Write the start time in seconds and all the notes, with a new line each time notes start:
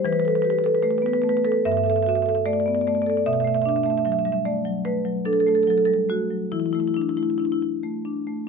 0.05 E3 B4
0.13 B4
0.20 B4
0.25 A4 B4
0.35 B4
0.42 G4 B4
0.50 B4
0.59 B4
0.64 A4 B4
0.75 B4
0.83 A3 B4
0.91 B4
0.98 B3 B4
1.06 B4
1.14 B4
1.22 A3 B4
1.29 B4
1.37 B4
1.45 A4 B4
1.52 B4
1.65 G2 E5
1.72 E5
1.77 E5
1.84 A4 E5
1.90 E5
1.96 E5
2.03 F#4 E5
2.09 E5
2.15 E5
2.22 A4 E5
2.29 E5
2.35 E5
2.46 A3 D5
2.53 D5
2.60 D5
2.66 B3 D5
2.75 D5
2.81 D5
2.87 A3 D5
2.95 D5
3.02 D5
3.06 A4 D5
3.17 D5
3.26 B2 E5
3.33 E5
3.40 E5
3.45 A3 E5
3.54 E5
3.62 D4 E5
3.69 E5
3.76 E5
3.83 A3 E5
3.90 E5
3.98 E5
4.05 F#3 E5
4.12 E5
4.19 E5
4.25 G3 E5
4.32 E5
4.45 A3 D5
4.65 F#3
4.85 A3 B4
5.05 F#3
5.25 D4 A4
5.33 A4
5.40 A4
5.47 A3 A4
5.55 A4
5.63 A4
5.67 F#3 A4
5.78 A4
5.85 G3 A4
5.94 A4
6.09 A3 F#4
6.31 F#3
6.52 E3 E4
6.60 E4
6.66 E4
6.73 A3 E4
6.80 E4
6.88 E4
6.94 D4 E4
7.02 E4
7.09 E4
7.17 A3 E4
7.23 E4
7.30 E4
7.38 D4 E4
7.45 E4
7.52 E4
7.62 E4
7.83 A3
8.05 D4
8.27 A3